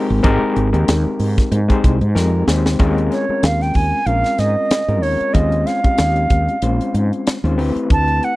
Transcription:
0.00 0.22 G#3 medium
0.00 0.22 C4 medium
0.00 0.21 D#4 medium
0.00 0.22 G4 medium
0.00 0.22 A#4 medium
0.10 0.23 G#1 medium
0.23 0.40 G#1 loud
0.23 0.69 G#3 loud
0.23 0.68 C4 loud
0.23 0.69 D#4 loud
0.23 0.69 G4 loud
0.23 0.69 A#4 loud
0.23 kick medium
0.23 closed hi-hat medium
0.43 muted fretless electric bass stroke soft
0.56 0.72 G#1 medium
0.56 closed hi-hat medium
0.73 0.87 D#2 medium
0.73 1.59 G#3 medium
0.73 1.59 C4 medium
0.73 1.59 D#4 medium
0.73 1.59 G4 medium
0.73 1.59 A#4 medium
0.73 closed hi-hat soft
0.88 1.04 D#2 medium
0.88 snare loud
0.88 closed hi-hat medium
1.06 muted fretless electric bass stroke soft
1.19 1.36 G#2 medium
1.19 open hi-hat medium
1.38 kick medium
1.38 snare soft
1.38 closed hi-hat soft
1.51 1.68 G#2 medium
1.51 closed hi-hat medium
1.68 1.98 G#3 loud
1.68 1.98 C4 medium
1.68 1.98 D#4 medium
1.68 1.98 G4 medium
1.68 1.98 C5 loud
1.68 kick medium
1.68 closed hi-hat soft
1.84 2.00 C2 medium
1.84 kick medium
1.84 closed hi-hat medium
2.00 2.14 G#2 medium
2.00 2.08 G4 soft
2.00 2.08 C5 soft
2.00 closed hi-hat soft
2.15 2.44 F2 medium
2.15 2.45 G#3 medium
2.15 2.45 C4 medium
2.15 2.45 D#4 medium
2.15 2.45 G4 medium
2.15 2.45 A#4 medium
2.15 snare medium
2.47 2.76 D#2 medium
2.47 2.77 G#3 medium
2.47 2.77 C4 medium
2.47 2.77 D#4 medium
2.47 2.77 G4 medium
2.47 2.77 C5 medium
2.47 snare medium
2.66 snare medium
2.79 3.08 D#2 medium
2.79 3.24 G#3 loud
2.79 3.24 C4 medium
2.79 3.24 C#4 loud
2.79 3.24 F4 medium
2.79 3.24 A#4 loud
2.79 kick medium
2.79 closed hi-hat medium
2.98 closed hi-hat soft
3.12 3.46 C#5 medium
3.12 snare soft
3.12 closed hi-hat soft
3.29 4.01 G#3 medium
3.29 4.01 C4 medium
3.29 4.01 C#4 medium
3.29 4.01 F4 medium
3.29 4.01 A#4 medium
3.29 muted fretless electric bass stroke soft
3.43 3.72 D#2 medium
3.43 3.64 F5 medium
3.43 snare loud
3.43 closed hi-hat medium
3.61 3.78 G5 medium
3.61 snare soft
3.61 closed hi-hat soft
3.74 3.91 D#2 medium
3.74 4.08 G#5 medium
3.74 kick medium
3.74 open hi-hat medium
4.06 4.23 A#1 medium
4.06 4.81 G#3 medium
4.06 4.81 C4 soft
4.06 4.81 C#4 medium
4.06 4.81 F4 medium
4.06 4.81 A#4 medium
4.06 4.41 F5 medium
4.06 closed hi-hat medium
4.24 muted fretless electric bass stroke soft
4.24 snare soft
4.24 closed hi-hat soft
4.38 4.55 G#2 medium
4.38 5.04 D#5 medium
4.38 snare soft
4.38 closed hi-hat soft
4.71 muted fretless electric bass stroke soft
4.71 snare loud
4.71 closed hi-hat medium
4.88 5.02 G#2 medium
4.88 5.31 G#3 medium
4.88 5.31 C4 medium
4.88 5.31 C#4 medium
4.88 5.31 F4 medium
4.88 5.31 A#4 medium
4.88 closed hi-hat soft
5.02 5.18 D#2 medium
5.02 5.35 C#5 medium
5.02 open hi-hat medium
5.21 muted fretless electric bass stroke soft
5.21 closed hi-hat soft
5.33 5.63 D#2 medium
5.33 5.79 G#3 medium
5.33 5.79 C4 medium
5.33 5.79 C#4 medium
5.33 5.80 F4 medium
5.33 5.79 C5 medium
5.33 5.68 D#5 medium
5.33 kick medium
5.33 closed hi-hat medium
5.52 closed hi-hat soft
5.67 6.95 F5 medium
5.67 snare soft
5.67 closed hi-hat medium
5.84 6.56 G#3 medium
5.84 6.56 C4 medium
5.84 6.56 C#4 medium
5.84 6.56 F4 soft
5.84 6.56 G4 medium
5.84 muted fretless electric bass stroke soft
5.84 kick medium
5.84 closed hi-hat soft
5.98 6.27 D#2 medium
5.98 snare loud
5.98 closed hi-hat medium
6.16 closed hi-hat soft
6.30 6.47 D#2 medium
6.30 kick medium
6.30 closed hi-hat medium
6.48 closed hi-hat soft
6.62 6.79 A#1 medium
6.62 7.36 G#3 medium
6.62 7.36 C4 medium
6.62 7.36 C#4 medium
6.62 7.36 F4 medium
6.62 7.37 C5 medium
6.62 closed hi-hat medium
6.81 closed hi-hat soft
6.94 7.11 G#2 medium
6.94 closed hi-hat medium
7.13 closed hi-hat soft
7.27 muted fretless electric bass stroke soft
7.27 snare medium
7.27 closed hi-hat medium
7.44 7.58 D#2 medium
7.44 7.59 G#3 medium
7.44 7.57 C4 medium
7.44 7.59 C#4 medium
7.44 7.59 F4 medium
7.44 7.59 C5 medium
7.44 closed hi-hat soft
7.58 7.74 D2 medium
7.58 8.32 A3 medium
7.58 8.32 C4 medium
7.58 8.32 E4 medium
7.58 8.32 G4 medium
7.58 8.32 B4 medium
7.58 open hi-hat medium
7.76 muted fretless electric bass stroke soft
7.76 closed hi-hat soft
7.90 8.19 D2 medium
7.90 8.26 A5 loud
7.90 kick medium
7.90 closed hi-hat medium
8.08 closed hi-hat soft
8.23 8.36 F#5 medium
8.23 closed hi-hat medium

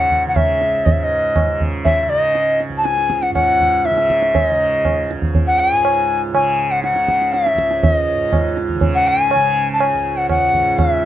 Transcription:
0.00 2.68 C#2 medium
0.00 0.84 G#2 soft
0.00 0.26 C#3 medium
0.00 0.26 F#5 medium
0.11 tabla ge soft
0.26 1.46 C#3 soft
0.26 0.37 F#5 soft
0.36 0.87 E5 medium
0.36 tabla na medium
0.36 tabla ge medium
0.61 tabla te medium
0.84 3.30 G#2 medium
0.84 0.93 D#5 medium
0.84 tabla tin medium
0.84 tabla ge medium
0.92 0.99 E5 medium
0.99 1.04 E5 medium
1.04 1.61 D#5 medium
1.36 tabla na medium
1.36 tabla ge medium
1.46 2.07 C#3 medium
1.61 tabla ge medium
1.84 2.03 E5 medium
1.84 tabla tin medium
1.84 tabla ge medium
2.03 3.91 C#3 medium
2.03 2.11 E5 medium
2.09 2.60 D#5 medium
2.35 tabla te medium
2.60 tabla te medium
2.69 5.12 C#2 medium
2.77 2.86 A5 medium
2.85 3.24 G#5 medium
2.85 tabla te medium
2.98 tabla te medium
3.10 tabla ke medium
3.22 3.33 F#5 medium
3.22 tabla te medium
3.30 5.72 G#2 medium
3.30 3.87 F#5 medium
3.35 tabla na medium
3.35 tabla ge medium
3.60 tabla ge soft
3.85 4.37 E5 medium
3.85 tabla te medium
3.91 4.51 C#3 medium
3.98 tabla te medium
4.10 tabla ke medium
4.22 tabla te medium
4.35 5.10 D#5 medium
4.35 tabla tin medium
4.35 tabla ge medium
4.51 6.33 C#3 medium
4.85 tabla na medium
4.85 tabla ge medium
5.11 7.54 C#2 medium
5.11 tabla te medium
5.22 tabla ge soft
5.35 tabla tin medium
5.35 tabla ge medium
5.47 5.61 F#5 medium
5.59 6.22 G#5 loud
5.72 8.14 G#2 medium
5.85 tabla na medium
6.33 6.93 C#3 medium
6.33 6.73 G#5 medium
6.33 tabla na medium
6.71 6.83 F#5 medium
6.83 7.35 F#5 medium
6.83 tabla te medium
6.93 8.75 C#3 medium
6.93 tabla te medium
7.08 tabla ke medium
7.22 tabla te medium
7.33 7.85 E5 medium
7.33 tabla te medium
7.47 tabla te medium
7.54 9.93 C#2 medium
7.58 tabla ke medium
7.71 tabla te medium
7.83 8.57 D#5 medium
7.83 tabla tin medium
7.83 tabla ge medium
8.14 10.52 G#2 medium
8.33 tabla na medium
8.33 tabla ge medium
8.57 tabla te medium
8.69 tabla ge medium
8.75 9.35 C#3 medium
8.81 tabla tin medium
8.81 tabla ge medium
8.95 9.09 F#5 medium
9.08 9.69 G#5 loud
9.31 11.05 C#3 medium
9.31 tabla na medium
9.73 9.82 A5 medium
9.80 10.18 G#5 medium
9.80 tabla na medium
9.94 11.05 C#2 medium
10.17 10.29 F#5 medium
10.29 10.80 F#5 loud
10.29 tabla na medium
10.29 tabla ge medium
10.53 11.05 G#2 medium
10.53 tabla ge medium
10.78 11.05 E5 medium
10.78 tabla na medium
10.78 tabla ge medium

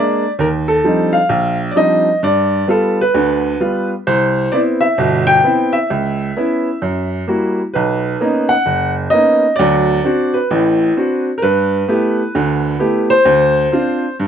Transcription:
0.00 0.23 G#3 medium
0.00 0.23 A#3 soft
0.00 0.24 D4 medium
0.00 0.30 D5 medium
0.39 0.78 D#2 medium
0.39 0.47 A#4 medium
0.68 1.15 A4 medium
0.84 1.16 F3 medium
0.84 1.16 G3 soft
0.84 1.16 C4 soft
0.84 1.16 D4 soft
0.84 1.17 D#4 medium
1.13 1.56 F5 medium
1.29 1.69 A#1 medium
1.71 1.76 D5 medium
1.76 2.08 F3 soft
1.76 2.08 G3 soft
1.76 2.08 C4 soft
1.76 2.08 D4 soft
1.76 2.08 D#4 medium
1.76 2.19 D#5 loud
2.23 2.62 G2 medium
2.23 2.66 D5 medium
2.67 3.00 G3 medium
2.67 3.00 B3 soft
2.67 3.00 F4 medium
2.67 2.97 A4 medium
3.01 3.88 B4 loud
3.14 3.54 D2 medium
3.14 3.54 D3 medium
3.60 3.92 G3 soft
3.60 3.92 B3 soft
3.60 3.92 F4 medium
4.07 4.46 C2 medium
4.07 4.54 C5 medium
4.52 4.84 B3 medium
4.52 4.84 C4 soft
4.52 4.85 E4 medium
4.52 4.59 D5 medium
4.81 5.29 E5 medium
4.98 5.38 G1 medium
4.98 5.38 B2 medium
5.27 5.75 G5 loud
5.44 5.76 B3 soft
5.44 5.76 C4 soft
5.44 5.76 E4 medium
5.73 7.07 E5 medium
5.90 6.30 C#2 medium
6.37 6.68 B3 medium
6.37 6.68 C#4 soft
6.37 6.69 E4 medium
6.82 7.22 F#2 medium
7.28 7.60 G3 soft
7.28 7.60 A#3 soft
7.28 7.60 E4 soft
7.28 7.60 F#4 medium
7.74 8.14 B1 medium
7.74 8.52 B4 medium
8.21 8.52 A#3 medium
8.21 8.52 B3 soft
8.21 8.52 C#4 medium
8.21 8.53 D#4 medium
8.49 8.92 F#5 medium
8.66 9.06 F#1 medium
9.10 9.44 A#3 soft
9.10 9.44 B3 soft
9.10 9.45 C#4 soft
9.10 9.45 D#4 medium
9.10 9.54 D#5 loud
9.56 9.98 D2 medium
9.56 9.98 F#3 medium
9.56 10.35 D5 loud
10.04 10.36 C4 soft
10.04 10.36 D4 soft
10.04 10.36 F#4 medium
10.34 11.22 B4 medium
10.51 10.90 A1 medium
10.51 10.90 A2 medium
10.97 11.28 C4 soft
10.97 11.28 D4 soft
10.97 11.29 F#4 medium
11.38 11.42 A#4 medium
11.42 11.82 G2 medium
11.42 13.16 B4 medium
11.88 12.20 A3 medium
11.88 12.20 B3 medium
11.88 12.20 E4 soft
11.88 12.21 G4 medium
12.35 12.74 D2 medium
12.35 12.74 D3 medium
12.79 13.12 A3 soft
12.79 13.12 B3 medium
12.79 13.12 E4 soft
12.79 13.12 G4 medium
13.10 14.14 C5 loud
13.25 13.65 D2 medium
13.72 14.04 C4 medium
13.72 14.04 D4 soft
13.72 14.04 F4 medium
14.20 14.28 G2 medium

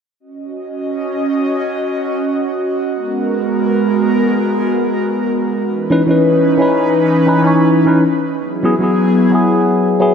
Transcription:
0.20 2.90 C#4 medium
0.20 5.62 F#4 medium
0.20 2.90 D#5 medium
2.93 5.63 G#3 medium
2.93 5.63 B3 medium
2.93 5.63 A#4 medium
5.66 8.36 E3 medium
5.66 8.36 C#4 medium
5.66 8.36 D#4 medium
5.66 8.36 B4 medium
5.90 6.00 E3 medium
5.90 6.01 C#4 medium
5.90 6.01 D#4 medium
5.90 6.01 B4 loud
6.06 6.56 E3 medium
6.06 6.57 C#4 medium
6.06 6.58 D#4 medium
6.11 6.59 B4 medium
6.57 7.24 E3 medium
6.57 7.25 C#4 medium
6.57 7.26 D#4 medium
6.62 7.27 B4 medium
7.27 7.41 E3 medium
7.27 7.42 C#4 medium
7.27 7.43 D#4 medium
7.27 7.43 B4 medium
7.42 7.84 E3 medium
7.42 7.85 C#4 medium
7.42 7.85 D#4 medium
7.47 7.86 C#5 medium
7.86 8.02 E3 medium
7.86 8.02 C#4 medium
7.86 8.03 D#4 medium
7.86 8.03 B4 medium
8.38 10.14 F#3 medium
8.38 10.14 B3 medium
8.38 10.14 E4 medium
8.38 10.14 G#4 medium
8.63 8.73 F#3 medium
8.63 8.73 B3 medium
8.63 8.74 E4 medium
8.63 8.74 G#4 loud
8.79 9.29 F#3 medium
8.79 9.30 B3 medium
8.79 9.31 E4 medium
8.84 9.31 G#4 medium
9.30 9.97 F#3 medium
9.30 9.98 B3 medium
9.30 9.99 E4 medium
9.35 10.00 G#4 medium
9.99 10.14 F#3 medium
9.99 10.14 B3 medium
9.99 10.14 E4 medium
9.99 10.14 G#4 loud

